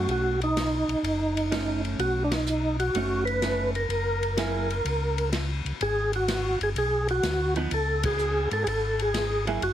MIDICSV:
0, 0, Header, 1, 5, 480
1, 0, Start_track
1, 0, Tempo, 476948
1, 87, Time_signature, 4, 2, 24, 8
1, 9792, End_track
2, 0, Start_track
2, 0, Title_t, "Tonewheel organ"
2, 0, Program_c, 0, 16
2, 112, Note_on_c, 0, 66, 94
2, 405, Note_off_c, 0, 66, 0
2, 438, Note_on_c, 0, 63, 70
2, 1826, Note_off_c, 0, 63, 0
2, 2010, Note_on_c, 0, 66, 84
2, 2247, Note_off_c, 0, 66, 0
2, 2256, Note_on_c, 0, 62, 58
2, 2340, Note_on_c, 0, 63, 73
2, 2343, Note_off_c, 0, 62, 0
2, 2783, Note_off_c, 0, 63, 0
2, 2814, Note_on_c, 0, 66, 85
2, 3260, Note_off_c, 0, 66, 0
2, 3274, Note_on_c, 0, 71, 105
2, 3730, Note_off_c, 0, 71, 0
2, 3781, Note_on_c, 0, 70, 80
2, 5329, Note_off_c, 0, 70, 0
2, 5861, Note_on_c, 0, 68, 95
2, 6159, Note_off_c, 0, 68, 0
2, 6196, Note_on_c, 0, 66, 82
2, 6632, Note_off_c, 0, 66, 0
2, 6675, Note_on_c, 0, 68, 84
2, 6738, Note_off_c, 0, 68, 0
2, 6824, Note_on_c, 0, 68, 79
2, 7121, Note_off_c, 0, 68, 0
2, 7152, Note_on_c, 0, 66, 87
2, 7590, Note_off_c, 0, 66, 0
2, 7788, Note_on_c, 0, 69, 101
2, 8082, Note_off_c, 0, 69, 0
2, 8104, Note_on_c, 0, 68, 84
2, 8546, Note_off_c, 0, 68, 0
2, 8585, Note_on_c, 0, 69, 75
2, 8686, Note_off_c, 0, 69, 0
2, 8695, Note_on_c, 0, 68, 58
2, 8730, Note_off_c, 0, 68, 0
2, 8739, Note_on_c, 0, 69, 84
2, 9071, Note_off_c, 0, 69, 0
2, 9077, Note_on_c, 0, 68, 78
2, 9513, Note_off_c, 0, 68, 0
2, 9695, Note_on_c, 0, 66, 101
2, 9792, Note_off_c, 0, 66, 0
2, 9792, End_track
3, 0, Start_track
3, 0, Title_t, "Hollow-body jazz guitar"
3, 0, Program_c, 1, 26
3, 0, Note_on_c, 1, 57, 56
3, 0, Note_on_c, 1, 61, 49
3, 0, Note_on_c, 1, 63, 54
3, 350, Note_off_c, 1, 57, 0
3, 352, Note_off_c, 1, 61, 0
3, 357, Note_off_c, 1, 63, 0
3, 1525, Note_on_c, 1, 57, 42
3, 1529, Note_on_c, 1, 61, 47
3, 1536, Note_on_c, 1, 63, 51
3, 2268, Note_off_c, 1, 57, 0
3, 2270, Note_off_c, 1, 61, 0
3, 2274, Note_off_c, 1, 63, 0
3, 2975, Note_on_c, 1, 57, 51
3, 2986, Note_on_c, 1, 61, 51
3, 2990, Note_on_c, 1, 63, 54
3, 3435, Note_off_c, 1, 57, 0
3, 3440, Note_off_c, 1, 61, 0
3, 3443, Note_off_c, 1, 63, 0
3, 3449, Note_on_c, 1, 57, 47
3, 3455, Note_on_c, 1, 63, 47
3, 3457, Note_on_c, 1, 61, 45
3, 3742, Note_off_c, 1, 57, 0
3, 3746, Note_off_c, 1, 63, 0
3, 3747, Note_off_c, 1, 61, 0
3, 4399, Note_on_c, 1, 54, 44
3, 4405, Note_on_c, 1, 58, 48
3, 4411, Note_on_c, 1, 64, 56
3, 4414, Note_on_c, 1, 68, 50
3, 4697, Note_off_c, 1, 54, 0
3, 4700, Note_off_c, 1, 58, 0
3, 4703, Note_off_c, 1, 64, 0
3, 4705, Note_off_c, 1, 68, 0
3, 7610, Note_on_c, 1, 53, 54
3, 7619, Note_on_c, 1, 59, 61
3, 7621, Note_on_c, 1, 63, 63
3, 7749, Note_off_c, 1, 53, 0
3, 7753, Note_off_c, 1, 59, 0
3, 7754, Note_off_c, 1, 63, 0
3, 9532, Note_on_c, 1, 54, 56
3, 9535, Note_on_c, 1, 58, 46
3, 9542, Note_on_c, 1, 64, 57
3, 9545, Note_on_c, 1, 68, 55
3, 9670, Note_off_c, 1, 54, 0
3, 9672, Note_off_c, 1, 58, 0
3, 9675, Note_off_c, 1, 64, 0
3, 9676, Note_off_c, 1, 68, 0
3, 9792, End_track
4, 0, Start_track
4, 0, Title_t, "Tonewheel organ"
4, 0, Program_c, 2, 16
4, 75, Note_on_c, 2, 35, 81
4, 848, Note_off_c, 2, 35, 0
4, 887, Note_on_c, 2, 35, 38
4, 965, Note_off_c, 2, 35, 0
4, 1033, Note_on_c, 2, 30, 78
4, 1959, Note_off_c, 2, 30, 0
4, 1996, Note_on_c, 2, 35, 80
4, 2921, Note_off_c, 2, 35, 0
4, 2959, Note_on_c, 2, 30, 84
4, 3882, Note_off_c, 2, 30, 0
4, 3911, Note_on_c, 2, 30, 82
4, 4838, Note_off_c, 2, 30, 0
4, 4876, Note_on_c, 2, 37, 80
4, 5649, Note_off_c, 2, 37, 0
4, 5683, Note_on_c, 2, 37, 34
4, 5762, Note_off_c, 2, 37, 0
4, 5842, Note_on_c, 2, 32, 78
4, 6611, Note_off_c, 2, 32, 0
4, 6645, Note_on_c, 2, 31, 65
4, 6790, Note_off_c, 2, 31, 0
4, 6797, Note_on_c, 2, 35, 76
4, 7247, Note_off_c, 2, 35, 0
4, 7275, Note_on_c, 2, 38, 72
4, 7726, Note_off_c, 2, 38, 0
4, 7756, Note_on_c, 2, 37, 87
4, 8529, Note_off_c, 2, 37, 0
4, 8567, Note_on_c, 2, 44, 74
4, 8712, Note_off_c, 2, 44, 0
4, 8717, Note_on_c, 2, 32, 73
4, 9642, Note_off_c, 2, 32, 0
4, 9675, Note_on_c, 2, 30, 86
4, 9792, Note_off_c, 2, 30, 0
4, 9792, End_track
5, 0, Start_track
5, 0, Title_t, "Drums"
5, 87, Note_on_c, 9, 51, 45
5, 188, Note_off_c, 9, 51, 0
5, 418, Note_on_c, 9, 51, 38
5, 518, Note_off_c, 9, 51, 0
5, 572, Note_on_c, 9, 38, 69
5, 573, Note_on_c, 9, 44, 65
5, 573, Note_on_c, 9, 51, 66
5, 672, Note_off_c, 9, 38, 0
5, 673, Note_off_c, 9, 44, 0
5, 673, Note_off_c, 9, 51, 0
5, 898, Note_on_c, 9, 51, 38
5, 998, Note_off_c, 9, 51, 0
5, 1050, Note_on_c, 9, 51, 53
5, 1151, Note_off_c, 9, 51, 0
5, 1379, Note_on_c, 9, 51, 41
5, 1480, Note_off_c, 9, 51, 0
5, 1530, Note_on_c, 9, 38, 60
5, 1531, Note_on_c, 9, 44, 47
5, 1531, Note_on_c, 9, 51, 63
5, 1631, Note_off_c, 9, 38, 0
5, 1632, Note_off_c, 9, 44, 0
5, 1632, Note_off_c, 9, 51, 0
5, 1858, Note_on_c, 9, 51, 37
5, 1959, Note_off_c, 9, 51, 0
5, 2007, Note_on_c, 9, 51, 50
5, 2108, Note_off_c, 9, 51, 0
5, 2330, Note_on_c, 9, 38, 68
5, 2331, Note_on_c, 9, 51, 62
5, 2430, Note_off_c, 9, 38, 0
5, 2431, Note_off_c, 9, 51, 0
5, 2482, Note_on_c, 9, 44, 62
5, 2583, Note_off_c, 9, 44, 0
5, 2814, Note_on_c, 9, 51, 41
5, 2915, Note_off_c, 9, 51, 0
5, 2966, Note_on_c, 9, 51, 57
5, 3067, Note_off_c, 9, 51, 0
5, 3293, Note_on_c, 9, 51, 39
5, 3393, Note_off_c, 9, 51, 0
5, 3443, Note_on_c, 9, 38, 66
5, 3444, Note_on_c, 9, 44, 46
5, 3444, Note_on_c, 9, 51, 57
5, 3543, Note_off_c, 9, 38, 0
5, 3544, Note_off_c, 9, 44, 0
5, 3544, Note_off_c, 9, 51, 0
5, 3775, Note_on_c, 9, 51, 38
5, 3875, Note_off_c, 9, 51, 0
5, 3925, Note_on_c, 9, 51, 50
5, 4025, Note_off_c, 9, 51, 0
5, 4255, Note_on_c, 9, 51, 39
5, 4355, Note_off_c, 9, 51, 0
5, 4402, Note_on_c, 9, 38, 66
5, 4403, Note_on_c, 9, 44, 55
5, 4403, Note_on_c, 9, 51, 66
5, 4503, Note_off_c, 9, 38, 0
5, 4504, Note_off_c, 9, 44, 0
5, 4504, Note_off_c, 9, 51, 0
5, 4734, Note_on_c, 9, 51, 39
5, 4835, Note_off_c, 9, 51, 0
5, 4886, Note_on_c, 9, 51, 54
5, 4987, Note_off_c, 9, 51, 0
5, 5213, Note_on_c, 9, 51, 42
5, 5314, Note_off_c, 9, 51, 0
5, 5359, Note_on_c, 9, 38, 59
5, 5360, Note_on_c, 9, 44, 50
5, 5360, Note_on_c, 9, 51, 63
5, 5460, Note_off_c, 9, 38, 0
5, 5461, Note_off_c, 9, 44, 0
5, 5461, Note_off_c, 9, 51, 0
5, 5697, Note_on_c, 9, 51, 35
5, 5798, Note_off_c, 9, 51, 0
5, 5845, Note_on_c, 9, 51, 54
5, 5945, Note_off_c, 9, 51, 0
5, 6170, Note_on_c, 9, 51, 43
5, 6270, Note_off_c, 9, 51, 0
5, 6323, Note_on_c, 9, 38, 66
5, 6324, Note_on_c, 9, 44, 68
5, 6324, Note_on_c, 9, 51, 70
5, 6424, Note_off_c, 9, 38, 0
5, 6425, Note_off_c, 9, 44, 0
5, 6425, Note_off_c, 9, 51, 0
5, 6651, Note_on_c, 9, 51, 39
5, 6752, Note_off_c, 9, 51, 0
5, 6804, Note_on_c, 9, 51, 53
5, 6905, Note_off_c, 9, 51, 0
5, 7129, Note_on_c, 9, 51, 39
5, 7230, Note_off_c, 9, 51, 0
5, 7279, Note_on_c, 9, 38, 68
5, 7280, Note_on_c, 9, 44, 49
5, 7280, Note_on_c, 9, 51, 59
5, 7379, Note_off_c, 9, 38, 0
5, 7380, Note_off_c, 9, 44, 0
5, 7380, Note_off_c, 9, 51, 0
5, 7606, Note_on_c, 9, 51, 37
5, 7706, Note_off_c, 9, 51, 0
5, 7760, Note_on_c, 9, 51, 54
5, 7861, Note_off_c, 9, 51, 0
5, 8085, Note_on_c, 9, 51, 76
5, 8089, Note_on_c, 9, 36, 76
5, 8186, Note_off_c, 9, 51, 0
5, 8189, Note_off_c, 9, 36, 0
5, 8240, Note_on_c, 9, 44, 47
5, 8341, Note_off_c, 9, 44, 0
5, 8567, Note_on_c, 9, 51, 41
5, 8668, Note_off_c, 9, 51, 0
5, 8724, Note_on_c, 9, 51, 59
5, 8824, Note_off_c, 9, 51, 0
5, 9052, Note_on_c, 9, 51, 43
5, 9152, Note_off_c, 9, 51, 0
5, 9200, Note_on_c, 9, 38, 61
5, 9201, Note_on_c, 9, 44, 58
5, 9201, Note_on_c, 9, 51, 66
5, 9301, Note_off_c, 9, 38, 0
5, 9302, Note_off_c, 9, 44, 0
5, 9302, Note_off_c, 9, 51, 0
5, 9533, Note_on_c, 9, 51, 38
5, 9633, Note_off_c, 9, 51, 0
5, 9684, Note_on_c, 9, 51, 47
5, 9785, Note_off_c, 9, 51, 0
5, 9792, End_track
0, 0, End_of_file